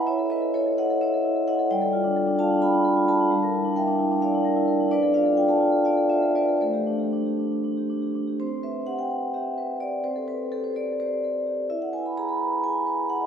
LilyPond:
\new Staff \with { instrumentName = "Vibraphone" } { \time 7/8 \key c \lydian \tempo 4 = 128 << { <cis'' e''>8 <b' dis''>8 <a' cis''>8 <dis'' fis''>8 <cis'' e''>4 <dis'' fis''>8 | <d'' g''>4. <f'' a''>8 <g'' b''>4 <f'' a''>8~ | <f'' a''>4 <e'' g''>4 <d'' f''>4 r8 | <b' d''>8 <d'' f''>8 g''16 <f'' a''>8. <d'' f''>8 <c'' e''>8 <b' d''>8 |
<a' c''>2 r4. | c''8 e''8 fis''16 g''8. e''4 d''8 | c''16 a'16 b'8 a'16 c''16 d''8 c''4. | e''16 fis''16 gis''16 b''16 bes''16 b''8. gis''4 fis''16 dis''16 | } \\ { e'16 a'16 e'16 a'16 e'16 a'16 e'16 a'16 e'16 a'16 e'16 a'16 e'16 a'16 | g16 a'16 f'16 d'16 a'16 d'16 f'16 d'16 f'16 d'16 a'16 f'16 a'16 d'16 | g16 bes'16 e'16 d'16 bes'16 d'16 e'16 d'16 e'16 d'16 bes'16 e'16 bes'16 d'16 | d'16 a'16 f'16 a'16 f'16 a'16 f'16 a'16 f'16 a'16 f'16 a'16 f'16 a'16 |
a16 g'16 d'16 g'16 d'16 g'16 d'16 g'16 d'16 g'16 d'16 g'16 d'16 g'16 | c'8 b'8 g'8 b'8 g'8 b'8 g'8 | c'8 a'8 g'8 a'8 g'8 a'8 g'8 | e'8 b'8 gis'8 b'8 gis'8 b'8 gis'8 | } >> }